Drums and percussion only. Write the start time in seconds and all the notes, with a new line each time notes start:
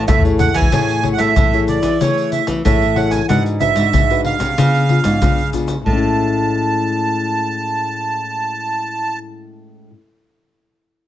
0.08 pandeiro, tamborim, shaker, surdo
0.19 surdo
0.25 pandeiro, shaker
0.39 surdo, pandeiro, shaker
0.54 pandeiro, shaker, surdo
0.61 surdo
0.72 pandeiro, shaker, surdo
0.89 pandeiro, shaker
1.03 pandeiro, surdo
1.18 pandeiro, shaker
1.36 pandeiro, shaker, surdo
1.53 pandeiro, shaker
1.68 pandeiro, shaker
1.83 pandeiro, shaker, surdo
2.01 pandeiro, shaker, surdo
2.18 pandeiro, shaker
2.32 pandeiro, shaker
2.47 pandeiro, shaker, surdo
2.65 pandeiro, shaker, surdo
2.82 pandeiro, shaker
2.96 pandeiro
3.11 pandeiro, shaker, surdo
3.29 pandeiro, shaker, surdo
3.46 pandeiro, shaker
3.61 pandeiro, shaker, surdo
3.76 pandeiro, shaker
3.93 pandeiro, shaker, surdo
4.10 pandeiro, shaker
4.25 pandeiro
4.40 pandeiro, shaker, surdo
4.58 pandeiro, shaker, surdo
4.74 pandeiro, shaker
4.89 pandeiro
5.04 pandeiro, shaker, surdo
5.22 pandeiro, shaker, surdo
5.38 pandeiro, shaker
5.53 pandeiro, shaker, surdo
5.68 pandeiro, shaker, surdo
5.86 surdo